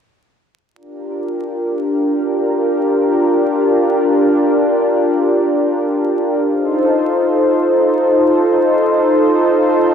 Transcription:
0, 0, Header, 1, 2, 480
1, 0, Start_track
1, 0, Key_signature, -2, "minor"
1, 0, Tempo, 500000
1, 9545, End_track
2, 0, Start_track
2, 0, Title_t, "Analog synth pad"
2, 0, Program_c, 0, 89
2, 712, Note_on_c, 0, 65, 72
2, 712, Note_on_c, 0, 67, 70
2, 712, Note_on_c, 0, 70, 85
2, 713, Note_on_c, 0, 62, 80
2, 6192, Note_off_c, 0, 62, 0
2, 6192, Note_off_c, 0, 65, 0
2, 6192, Note_off_c, 0, 67, 0
2, 6192, Note_off_c, 0, 70, 0
2, 6226, Note_on_c, 0, 63, 80
2, 6226, Note_on_c, 0, 65, 72
2, 6227, Note_on_c, 0, 69, 74
2, 6227, Note_on_c, 0, 72, 90
2, 9545, Note_off_c, 0, 63, 0
2, 9545, Note_off_c, 0, 65, 0
2, 9545, Note_off_c, 0, 69, 0
2, 9545, Note_off_c, 0, 72, 0
2, 9545, End_track
0, 0, End_of_file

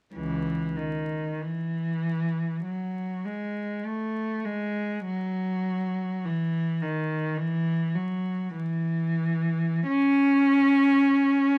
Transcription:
0, 0, Header, 1, 2, 480
1, 0, Start_track
1, 0, Tempo, 1273885
1, 55, Time_signature, 4, 2, 24, 8
1, 534, Tempo, 1224490
1, 1494, Tempo, 1197605
1, 2454, Tempo, 1147228
1, 3414, Tempo, 1321586
1, 3894, Tempo, 1176471
1, 4589, End_track
2, 0, Start_track
2, 0, Title_t, "Cello"
2, 0, Program_c, 0, 42
2, 51, Note_on_c, 0, 52, 47
2, 54, Note_on_c, 0, 37, 38
2, 280, Note_off_c, 0, 52, 0
2, 282, Note_off_c, 0, 37, 0
2, 289, Note_on_c, 0, 51, 43
2, 529, Note_off_c, 0, 51, 0
2, 532, Note_on_c, 0, 52, 50
2, 1011, Note_on_c, 0, 54, 49
2, 1013, Note_off_c, 0, 52, 0
2, 1250, Note_off_c, 0, 54, 0
2, 1253, Note_on_c, 0, 56, 46
2, 1489, Note_on_c, 0, 57, 50
2, 1493, Note_off_c, 0, 56, 0
2, 1726, Note_on_c, 0, 56, 49
2, 1731, Note_off_c, 0, 57, 0
2, 1970, Note_on_c, 0, 54, 62
2, 1972, Note_off_c, 0, 56, 0
2, 2442, Note_off_c, 0, 54, 0
2, 2451, Note_on_c, 0, 52, 54
2, 2687, Note_on_c, 0, 51, 49
2, 2693, Note_off_c, 0, 52, 0
2, 2917, Note_on_c, 0, 52, 62
2, 2926, Note_off_c, 0, 51, 0
2, 3158, Note_on_c, 0, 54, 52
2, 3160, Note_off_c, 0, 52, 0
2, 3410, Note_off_c, 0, 54, 0
2, 3410, Note_on_c, 0, 52, 63
2, 3884, Note_off_c, 0, 52, 0
2, 3891, Note_on_c, 0, 61, 80
2, 4589, Note_off_c, 0, 61, 0
2, 4589, End_track
0, 0, End_of_file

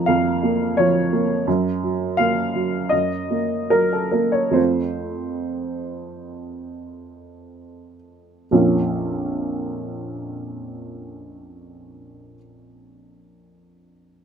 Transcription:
0, 0, Header, 1, 2, 480
1, 0, Start_track
1, 0, Key_signature, -5, "minor"
1, 0, Tempo, 693642
1, 1014, Time_signature, 4, 2, 24, 8
1, 1015, Tempo, 726392
1, 1975, Tempo, 796813
1, 2455, Tempo, 864553
1, 2935, Tempo, 927357
1, 3895, Tempo, 993377
1, 4375, Tempo, 1077199
1, 5335, Tempo, 1052632
1, 7461, End_track
2, 0, Start_track
2, 0, Title_t, "Upright piano"
2, 0, Program_c, 0, 0
2, 0, Control_c, 0, 64, 127
2, 0, Note_on_c, 0, 41, 55
2, 0, Note_on_c, 0, 53, 48
2, 0, Note_on_c, 0, 58, 42
2, 0, Note_on_c, 0, 82, 89
2, 43, Note_on_c, 0, 77, 73
2, 56, Note_off_c, 0, 41, 0
2, 56, Note_on_c, 0, 41, 50
2, 195, Note_off_c, 0, 53, 0
2, 300, Note_off_c, 0, 58, 0
2, 300, Note_on_c, 0, 58, 45
2, 525, Note_off_c, 0, 77, 0
2, 534, Note_on_c, 0, 73, 74
2, 549, Note_on_c, 0, 53, 50
2, 679, Note_off_c, 0, 58, 0
2, 781, Note_on_c, 0, 58, 40
2, 926, Note_off_c, 0, 53, 0
2, 988, Note_off_c, 0, 41, 0
2, 1016, Note_off_c, 0, 73, 0
2, 1019, Note_off_c, 0, 58, 0
2, 1019, Note_on_c, 0, 42, 57
2, 1027, Control_c, 0, 64, 0
2, 1032, Note_off_c, 0, 82, 0
2, 1144, Control_c, 0, 64, 127
2, 1257, Note_on_c, 0, 54, 43
2, 1481, Note_on_c, 0, 77, 79
2, 1495, Note_on_c, 0, 58, 39
2, 1633, Note_off_c, 0, 54, 0
2, 1728, Note_on_c, 0, 54, 42
2, 1879, Note_off_c, 0, 58, 0
2, 1950, Note_off_c, 0, 42, 0
2, 1958, Note_on_c, 0, 75, 59
2, 1973, Note_off_c, 0, 77, 0
2, 1973, Note_on_c, 0, 42, 41
2, 1985, Control_c, 0, 64, 0
2, 2080, Control_c, 0, 64, 127
2, 2115, Note_off_c, 0, 54, 0
2, 2207, Note_on_c, 0, 58, 34
2, 2446, Note_off_c, 0, 75, 0
2, 2447, Note_on_c, 0, 70, 68
2, 2457, Note_on_c, 0, 54, 44
2, 2568, Note_off_c, 0, 70, 0
2, 2572, Note_on_c, 0, 69, 51
2, 2593, Note_off_c, 0, 58, 0
2, 2676, Note_on_c, 0, 70, 49
2, 2683, Note_on_c, 0, 58, 33
2, 2690, Note_off_c, 0, 69, 0
2, 2790, Note_on_c, 0, 73, 56
2, 2804, Note_off_c, 0, 70, 0
2, 2837, Note_off_c, 0, 54, 0
2, 2896, Note_on_c, 0, 41, 43
2, 2898, Note_on_c, 0, 57, 31
2, 2906, Note_on_c, 0, 60, 30
2, 2907, Note_on_c, 0, 72, 57
2, 2912, Note_off_c, 0, 42, 0
2, 2915, Note_on_c, 0, 65, 33
2, 2924, Note_off_c, 0, 73, 0
2, 2932, Note_off_c, 0, 58, 0
2, 2944, Control_c, 0, 64, 0
2, 3038, Control_c, 0, 64, 127
2, 4603, Note_off_c, 0, 72, 0
2, 4825, Note_off_c, 0, 41, 0
2, 4825, Note_off_c, 0, 57, 0
2, 4829, Note_off_c, 0, 60, 0
2, 4832, Note_off_c, 0, 65, 0
2, 4857, Note_on_c, 0, 41, 37
2, 4861, Note_on_c, 0, 34, 45
2, 4862, Note_on_c, 0, 61, 38
2, 4863, Note_on_c, 0, 53, 36
2, 4865, Note_on_c, 0, 58, 37
2, 4867, Note_on_c, 0, 65, 38
2, 4870, Control_c, 0, 64, 0
2, 4966, Control_c, 0, 64, 127
2, 6596, Note_off_c, 0, 41, 0
2, 6600, Note_off_c, 0, 34, 0
2, 6600, Note_off_c, 0, 61, 0
2, 6602, Note_off_c, 0, 53, 0
2, 6604, Note_off_c, 0, 58, 0
2, 6606, Note_off_c, 0, 65, 0
2, 7461, End_track
0, 0, End_of_file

